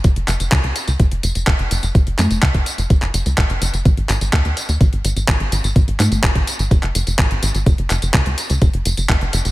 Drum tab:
HH |xxxxxxxxxxxxxxxx|xxxxxxxxxxxxxxxx|xxxxxxxxxxxxxxxx|xxxxxxxxxxxxxxxx|
TB |x-xx--xxx-xxx-xx|x-xxx-xxx-xxx-xx|x-xxx-xxx-xx--xx|x-xx--xxx-xxx-xx|
CP |--x-x-------x---|--x-x----x--x---|--x-x-------x---|--x-x----x--x---|
CG |----------------|--o-------------|----------------|--o-------------|
BD |o---o---o---o---|o---oo--o---o---|o---o---o---o---|o---oo--o---o---|

HH |xxxxxxxxxxxxxxxx|
TB |x-xxx-xxx-xxx-xx|
CP |--x-x-------x---|
CG |----------------|
BD |o---o---o---o---|